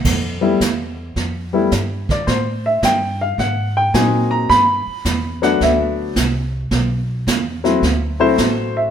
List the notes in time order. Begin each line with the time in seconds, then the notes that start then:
0.05 F2, brush sweep, kick, snare, crash
0.41 G3 A3 B3 E4
0.60 E2, kick, snare, hi-hat pedal
1.16 F2, brush sweep, kick, snare
1.53 G3 A3 B3 E4
1.71 G2, kick, snare, hi-hat pedal
2.09 D5, kick, snare
2.27 A2 C5, brush sweep, kick, snare
2.66 E5
2.82 G2 G5, kick, snare, hi-hat pedal
3.21 F5
3.38 G#2 F#5, brush sweep, kick, snare
3.77 G5
3.94 A#2 F#3 A#3 C4 D#4 G#5, kick, snare, hi-hat pedal
4.31 A#5
4.50 G2 B5, brush sweep, kick, snare
4.87 muted upright bass stroke
5.05 E2, kick, snare, hi-hat pedal
5.42 F#3 A3 B3 D4 F#5, snare
5.61 D2 E5, brush sweep, kick, snare
6.16 C2, kick, snare, hi-hat pedal
6.71 B1, brush sweep, kick, snare
7.27 E2, kick, snare, hi-hat pedal
7.64 F#3 A3 C4 E4, snare
7.82 D2, brush sweep, kick, snare
8.20 F#3 A3 C4 E4 F#4 A4 C5
8.38 A1, kick, snare, hi-hat pedal
8.77 E5